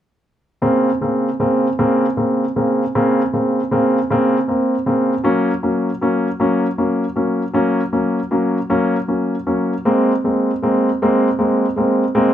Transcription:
0.62 C#3 A#3 C4
1.01 C#3 A#3 C4
1.40 C#3 A#3 C4
1.79 C#3 A#3 C4
2.17 C#3 A#3 C4
2.56 C#3 A#3 C4
2.95 C#3 A#3 C4
3.33 C#3 A#3 C4
3.71 C#3 A#3 C4
4.10 C#3 A#3 C4
4.48 A#3 C4
4.86 C#3 A#3 C4
5.24 F#3 A#3 C#4
5.63 F#3 A#3 C#4
6.01 F#3 A#3 C#4
6.40 F#3 A#3 C#4
6.78 F#3 A#3 C#4
7.16 F#3 A#3 C#4
7.53 F#3 A#3 C#4
7.92 F#3 A#3 C#4
8.31 F#3 A#3 C#4
8.70 F#3 A#3 C#4
9.08 F#3 A#3 C#4
9.46 F#3 A#3 C#4
9.85 G#3 A#3 C4
10.24 G#3 A#3 C4
10.62 G#3 A#3 C4
11.02 G#3 A#3 C4
11.39 G#3 A#3 C4
11.76 G#3 A#3 C4
12.15 G#3 A#3 C4

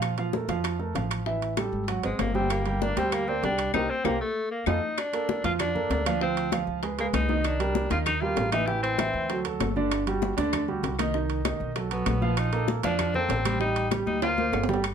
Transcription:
Already playing: A#2 F3 F4 F5
0.02 high bongo, high timbale, claves
0.18 F3 F4 F5, high conga, high timbale
0.33 A3 A4 A#4, high bongo, high conga
0.48 F2 F3 F4 F5, high bongo, high conga, high timbale
0.64 high bongo, high conga, high timbale, claves
0.79 A3 A4 A#4, high bongo, high conga
0.95 A1 F3 F4 F5, high bongo, low bongo, high conga, high timbale
1.11 high bongo, high timbale, claves
1.26 E3 E4 E5, high bongo, high conga
1.42 high conga, high timbale
1.57 G3 G4 A4, high bongo, high conga, high timbale, claves
1.72 G#1, high bongo, high conga
1.88 F#3 F#4 F#5, high bongo, high conga, high timbale
2.03 G#1 G#3 C4 C5 D#5, high bongo, high conga, high timbale
2.19 G1 A#3, high bongo, low bongo, high conga, high timbale, low timbale, claves
2.35 G3 C4 G4 G5, high bongo, high conga
2.50 A#3, high bongo, high timbale, claves
2.66 G3 G4 G5, high conga, high timbale
2.82 A#3 D4 A#4 D5, high bongo, high conga
2.96 D2 G3 C4 G4 G5, high conga, high timbale
3.12 A#3, high bongo, high conga, high timbale, claves
3.28 A#3 C4 A#4 D5, high bongo, high conga
3.43 C2 G3 D4 G4 G5, high bongo, low bongo, high conga, high timbale, low timbale
3.58 high bongo, high timbale, claves
3.74 C2 D#4 G4 A#4 C5, low bongo, high conga, high timbale, claves
3.90 C4
4.05 C2 A#3 G4 A#4 C5, low bongo, high conga, high timbale, claves
4.21 A3
4.51 A#3
4.66 F2 D#4 F4 A4, low bongo, high conga, high timbale, claves
4.97 D4, high bongo, high conga, high timbale, claves
5.13 A#3 A4 A#4, high conga, high timbale
5.29 high bongo, high conga
5.44 F2 F3 F4 F5, high bongo, high conga, high timbale
5.59 D4, high bongo, high conga, low conga, high timbale, claves
5.74 A#3 A4 A#4, high bongo, high conga, low conga
5.90 D2 D4, high bongo, low bongo, high conga, high timbale, low timbale
6.06 F3 F4 F5, high bongo, high conga, high timbale, claves
6.21 F3 C4 F4 F5, high bongo, high conga
6.37 high conga, high timbale
6.52 F3 F4 F5, high bongo, high conga, high timbale, claves
6.67 C#2, high bongo, high conga
6.83 G#3 G#4 B4, high bongo, high conga, high timbale
6.98 G#3 A#3 G#4 B4, high bongo, high conga, high timbale
7.13 C2 D#4, high bongo, low bongo, high conga, high timbale, low timbale, claves
7.29 D#3 D#4 D#5, high bongo, high conga
7.44 D4, high bongo, high conga, high timbale, claves
7.60 G3 G4 A#4, high conga, high timbale
7.75 high bongo, high conga
7.90 D#2 D#3 D#4 F4 D#5, high bongo, high conga, high timbale
8.06 D#4, high bongo, high conga, low conga, high timbale, claves
8.21 G3 F4 G4 A#4, high bongo, high conga
8.36 A1, high bongo, low bongo, high conga, high timbale, low timbale
8.52 E3 D#4 E4 E5, high bongo, high conga, high timbale, claves
8.67 E3 E4 G4 E5, high bongo
8.83 C4, high conga, high timbale
8.98 E3 E4 E5, high bongo, high conga, high timbale, claves
9.13 D2, high bongo, high conga
9.30 F#3 F#4 A4, high bongo, high conga, high timbale
9.45 F#3 F#4 A4, high bongo, high conga, high timbale
9.60 G1, high bongo, low bongo, high conga, high timbale, low timbale, claves
9.76 D3 D4 D5, high bongo, high conga
9.91 high bongo, high conga, high timbale, claves
10.07 G3 F#4 G4, high conga, high timbale
10.22 high bongo, high conga
10.37 D2 D3 D4 D5, high conga, high timbale
10.53 high bongo, high conga, low conga, high timbale, claves
10.68 G3 F#4 G4, high bongo, high conga
10.83 C2, high bongo, low bongo, high conga, high timbale
10.99 D#3 D#4 D#5, high bongo, high conga, high timbale, claves
11.14 D#3 D#4 D#5, high bongo, high conga
11.30 high conga, high timbale
11.45 D#3 D#4 D#5, high bongo, high conga, high timbale, claves
11.60 B1, high bongo, high conga
11.75 F#3 F#4 A4, high bongo, high conga, high timbale
11.91 F#3 B3 F#4 A4, high bongo, high conga, high timbale
12.06 A#1, high bongo, low bongo, high conga, high timbale, low timbale, claves
12.22 F3 F4 F5, high bongo, high conga
12.37 D#4, high bongo, high conga, high timbale, claves
12.53 A#3 A4 A#4, high conga, high timbale
12.68 high bongo, high conga
12.83 F2 F3 D4 F4 F5, high bongo, high conga, high timbale
12.99 high bongo, high conga, low conga, high timbale, claves
13.14 A#3 C4 A4 A#4, high bongo, high conga, low conga
13.29 A1, high bongo, low bongo, high conga, high timbale, low timbale
13.45 G3 G4 G5, high bongo, high conga, high timbale, claves
13.60 G3 D#4 G4 G5, high bongo
13.76 high conga, high timbale
13.91 G3 G4 G5, high bongo, high conga, high timbale, claves
14.06 D2 D#4, high bongo, high conga
14.22 A#3 F4 A#4 C5, high bongo, high conga, high timbale
14.38 A#3 A#4 C5, high bongo, high conga
14.52 G1, high bongo, low bongo, low timbale, claves
14.64 low timbale
14.68 G3 G4 G5, high bongo, low conga
14.74 low timbale
14.84 high conga, high timbale, claves

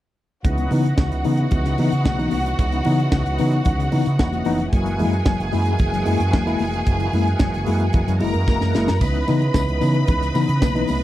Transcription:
0.44 C#2 C#3 E3 B3 D#4 F#4 F#5, kick, closed hi-hat, muted conga
0.58 B3 D#4, closed hi-hat
0.71 C#3 E3 B3 D#4, open hi-hat, muted conga
0.85 closed hi-hat
0.98 C#2 C#3, kick, snare, high conga
1.12 C#2, closed hi-hat
1.24 C#3 E3 B3 D#4, open hi-hat
1.37 B3 D#4, closed hi-hat
1.51 C#2 B3 D#4, kick, closed hi-hat, muted conga, low conga
1.65 C#3, snare, closed hi-hat
1.78 C#3 E3 B3 D#4, open hi-hat, muted conga
1.92 C#3, closed hi-hat
2.05 B1 C#3, kick, snare, high conga
2.18 E3 B3 D#4, closed hi-hat, high conga
2.31 C2 B3 D#4, open hi-hat, high conga
2.46 closed hi-hat
2.59 C#2 C#3, kick, closed hi-hat, muted conga
2.72 B3 D#4, closed hi-hat
2.85 C#3 E3 B3 D#4, open hi-hat, muted conga
3.00 closed hi-hat
3.12 C#2 C#3, kick, snare, high conga
3.26 C#2, closed hi-hat
3.38 C#3 E3 B3 D#4, open hi-hat
3.52 B3 D#4, closed hi-hat
3.65 C#2 B3 D#4, kick, closed hi-hat, low conga
3.79 C#3, closed hi-hat
3.92 C#3 E3 B3 D#4, open hi-hat, muted conga
4.06 C#3, closed hi-hat
4.19 E1, kick, snare, high conga
4.33 closed hi-hat, high conga
4.45 F1 E3 B3 D#4, open hi-hat, high conga
4.60 closed hi-hat
4.73 F#1 F#3 G#3 A#3 F#4 G#4 G#5, kick, closed hi-hat, muted conga
4.86 A#3 E4, closed hi-hat
4.99 F#2 G#3 A#3 E4, open hi-hat, muted conga
5.13 closed hi-hat
5.26 F#1 F#3, kick, snare, high conga
5.40 F#1, closed hi-hat
5.52 F#2 G#3 A#3 E4, open hi-hat
5.65 A#3 E4, closed hi-hat
5.79 F#1 A#3 E4, kick, closed hi-hat, muted conga, low conga
5.93 F#3, snare, closed hi-hat
6.06 F#2 G#3 A#3 E4, open hi-hat, muted conga
6.20 F#2, closed hi-hat
6.33 E1 F#3, kick, snare, high conga
6.46 G#3 A#3 E4, closed hi-hat, high conga
6.59 F1 A#3 E4, open hi-hat, high conga
6.74 closed hi-hat
6.86 F#1 F#3, kick, closed hi-hat, muted conga
7.00 A#3 E4, closed hi-hat
7.13 F#2 G#3 A#3 E4, open hi-hat, muted conga
7.28 closed hi-hat
7.40 F#1 F#3, kick, snare, high conga
7.54 F#1, closed hi-hat
7.66 F#2 G#3 A#3 E4, open hi-hat
7.80 A#3 E4, closed hi-hat
7.93 F#1 A#3 E4, kick, closed hi-hat, muted conga, low conga
8.07 F#2 F#3, snare, closed hi-hat
8.20 F#1 G#3 A#3 E4 A#4 A#5, open hi-hat, muted conga
8.34 F#2, closed hi-hat
8.48 F#1 A#3 E4, kick, snare, high conga
8.61 F#2 F#3, snare, high conga
8.74 F#1 G#3 A#3 E4, snare, high conga
8.88 F#2, snare
9.01 C#2 C#3 B3 D#4 B4 B5, kick, crash, tambourine, muted conga
9.14 B3 D#4, closed hi-hat
9.28 C#3 E3 B3 D#4, open hi-hat, tambourine, muted conga
9.42 closed hi-hat
9.54 C#2 C#3, kick, snare, tambourine, high conga
9.68 C#2, closed hi-hat
9.81 C#3 E3 B3 D#4, open hi-hat, tambourine
9.94 B3 D#4, closed hi-hat
10.07 C#2 B3 D#4, kick, closed hi-hat, tambourine, low conga
10.21 C#3, snare, closed hi-hat
10.35 C#3 E3 B3 D#4, open hi-hat, tambourine, muted conga
10.49 C#3, closed hi-hat
10.62 B1 C#3, kick, snare, tambourine, high conga
10.75 E3 B3 D#4, closed hi-hat, high conga
10.87 C2 B3 D#4, open hi-hat, tambourine, high conga

